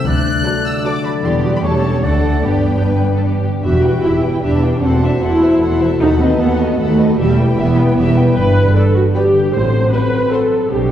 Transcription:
Already playing: A3 A4
0.06 D2 D3 D4 D5 F#6
0.26 D4
0.45 F#3 F#4 A4 D5
0.66 F#4 E6
0.84 F#3 F#4 A4 D5 D6
1.04 F#3 B5
1.23 E1 E2 E3 G3 B3 E4 G4 D5 C6
1.43 D4 F#4 G4
1.56 B5
1.63 E1 E2 E3 A3 C#4 G4 A4 C#5 A5
1.83 C#4 G4
2.03 D2 D3 A3 D4 A4 D5 F#5
2.23 D4 A4
2.43 G1 G2 B3 D4 G4 B4 D5 G5
2.64 B3
2.83 D4 B4
3.04 G4
3.15 A4
3.24 D4 G4
3.44 D3
3.64 E1 E2 E3 B3 F#4 G4 E5 B5
3.84 B3 B4 G5
4.03 E1 E2 E4 G4 E5 B5
4.22 B4 G5
4.42 E1 E2 D4 E4 G4 E5 B5
4.63 B3 B4 G5
4.82 E1 E2 E3 A3 C4 F#4 A4 F#5 C6
5.03 D4 E4 C5 E5 A5
5.22 E1 E2 C4 E4 A4 F#5 C6
5.41 A4 C5 E5 A5
5.61 E1 E2 C4 A4 F#5 C6
5.81 E4 C5 E5 A5
6.00 D#2 D#3 D#4 A4 F#5 B5
6.20 A3 C4 B4 D#5 A5
6.40 D#2 B3 A4 F#5 B5
6.59 A4 B4 D#5 A5
6.79 D#2 A3 B3 A4 F#5 B5
6.99 B4 D#5 A5
7.18 E1 E2 E3 G3 E4 G4 E5 B5
7.37 B3 B4 G5
7.57 E1 E2 B3 E4 G4 E5 B5
7.76 B4 G5
7.96 E1 E2 E4 G4 E5 B5
8.15 B3 B4 G5
8.35 G1 G2 D4 B4
8.55 D3
8.75 B3 A4 B4 D5 G5
8.95 F#4 G4
9.14 B3 G4 B4 D5 G5
9.34 D3
9.53 A1 A2 F#3 C4 C5
9.73 F#3
9.92 A3 B4 C5 F#5
10.12 F#4
10.31 A3 A4 C5 F#5
10.50 F#3
10.69 B1 B2 G3 D4 G4

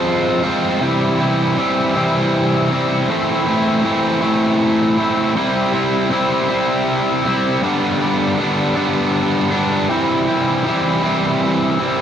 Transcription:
Already playing: F3 G#3 C4 F4
0.43 G#3 C4 F4
0.81 C3 E3 G3 C4 E4
1.19 G3 C4 E4
1.56 E3 G3 C4 E4
1.95 C3 E3 G3 C4 E4
2.71 G3 C4 E4
3.08 A2 E3 A3 C4 E4
3.46 A3 C4 E4
3.85 E3 A3 C4 E4
4.21 A2 E3 A3 C4 E4
4.98 A3 C4 E4
5.35 C3 G3 C4 E4
5.73 G3 C4 E4
6.10 C3 G3 C4 E4
6.48 C3 G3 C4 E4
7.24 G3 C4 E4
7.63 G2 D3 G3 B3 D4
8.01 G3 B3 D4
8.38 D3 G3 B3 D4
8.75 G2 D3 G3 B3 D4
9.51 G3 B3 D4
9.89 C3 E3 G3 C4 E4
10.27 G3 C4 E4
10.65 E3 G3 C4 E4
11.03 C3 E3 G3 C4 E4
11.79 G3 C4 E4

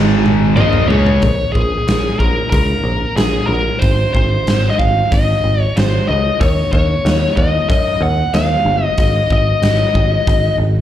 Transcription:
Already playing: G#1 G#2 D#3 G#3
0.26 high tom
0.56 A#1 A#2 F3 A#3 D#5, mid tom
0.73 mid tom
0.88 C#2 C#3 G#3 C#4 C#5, floor tom
1.06 floor tom
1.22 A#1, kick, open hi-hat
1.52 A#1 G#4, kick
1.87 A#1, snare, open hi-hat
2.19 A#1 A#4, kick
2.50 C#2 A#4, kick, open hi-hat
2.84 A#1
3.16 A#1 G#4, snare, open hi-hat
3.47 A#1 A#4
3.79 G#1 C5, kick, open hi-hat
4.14 G#1 C5, kick
4.47 G#1, snare, open hi-hat
4.70 D#5
4.78 G#1 F5, kick
5.12 G#1 D#5, kick, open hi-hat
5.44 G#1
5.62 C#5
5.77 G#1 C5, snare, open hi-hat
6.08 C#2 D#5
6.40 D#2 C#5, kick, open hi-hat
6.72 D#2 C#5, kick
7.05 D#2, snare, open hi-hat
7.36 D#2 D#5, kick
7.69 F#2 D#5, kick, open hi-hat
8.01 D#2 F#5
8.34 D#2 F5, snare, open hi-hat
8.65 G1
8.84 D#5
8.98 G#1 D#5, kick, open hi-hat
9.30 G#1 D#5, kick
9.62 G#1, snare, open hi-hat
9.95 G#1, kick
10.27 G#1, kick, open hi-hat
10.58 G#1

